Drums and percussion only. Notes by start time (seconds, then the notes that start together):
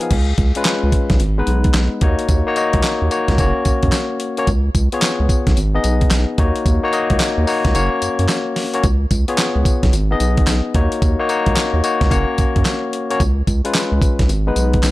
0.01 closed hi-hat
0.11 kick, closed hi-hat, crash
0.38 kick, closed hi-hat
0.55 closed hi-hat
0.65 snare, clap, closed hi-hat
0.92 kick, closed hi-hat
1.10 kick, snare, closed hi-hat
1.20 closed hi-hat
1.47 closed hi-hat
1.64 kick, closed hi-hat
1.74 snare, clap, closed hi-hat
2.01 kick, closed hi-hat
2.19 closed hi-hat
2.29 kick, closed hi-hat, tambourine
2.56 closed hi-hat, tambourine
2.73 kick, closed hi-hat
2.83 snare, clap, closed hi-hat, tambourine
3.11 closed hi-hat, tambourine
3.28 kick, snare, closed hi-hat
3.38 kick, closed hi-hat, tambourine
3.65 kick, closed hi-hat, tambourine
3.83 kick, closed hi-hat
3.92 snare, clap, closed hi-hat, tambourine
4.20 closed hi-hat
4.37 closed hi-hat
4.47 kick, closed hi-hat, tambourine
4.75 kick, closed hi-hat, tambourine
4.92 closed hi-hat
5.02 snare, clap, closed hi-hat, tambourine
5.29 kick, closed hi-hat, tambourine
5.47 kick, snare, closed hi-hat
5.57 closed hi-hat, tambourine
5.84 closed hi-hat, tambourine
6.01 kick, closed hi-hat
6.11 snare, clap, closed hi-hat, tambourine
6.38 kick, closed hi-hat
6.56 closed hi-hat
6.66 kick, closed hi-hat, tambourine
6.93 closed hi-hat, tambourine
7.10 kick, closed hi-hat
7.20 snare, clap, closed hi-hat, tambourine
7.47 open hi-hat, tambourine
7.65 kick, snare, closed hi-hat
7.75 closed hi-hat, tambourine
8.02 closed hi-hat, tambourine
8.19 closed hi-hat
8.29 snare, clap, closed hi-hat, tambourine
8.56 snare, open hi-hat
8.74 closed hi-hat
8.83 kick, closed hi-hat, tambourine
9.11 kick, closed hi-hat, tambourine
9.28 closed hi-hat
9.38 snare, clap, closed hi-hat, tambourine
9.65 kick, closed hi-hat, tambourine
9.83 kick, snare, closed hi-hat
9.93 closed hi-hat, tambourine
10.20 closed hi-hat, tambourine
10.37 kick, closed hi-hat
10.47 snare, clap, closed hi-hat, tambourine
10.75 kick, closed hi-hat
10.92 closed hi-hat
11.02 kick, closed hi-hat, tambourine
11.29 closed hi-hat, tambourine
11.46 kick, closed hi-hat
11.56 snare, clap, closed hi-hat, tambourine
11.84 closed hi-hat, tambourine
12.01 kick, snare, closed hi-hat
12.11 kick, closed hi-hat, tambourine
12.38 kick, closed hi-hat, tambourine
12.56 kick, closed hi-hat
12.65 snare, clap, closed hi-hat, tambourine
12.93 closed hi-hat
13.11 closed hi-hat
13.20 kick, closed hi-hat, tambourine
13.47 kick, closed hi-hat, tambourine
13.65 closed hi-hat
13.75 snare, clap, closed hi-hat, tambourine
14.02 kick, closed hi-hat, tambourine
14.19 kick, snare, closed hi-hat
14.29 closed hi-hat, tambourine
14.56 closed hi-hat, tambourine
14.74 kick, closed hi-hat
14.83 snare, clap, closed hi-hat, tambourine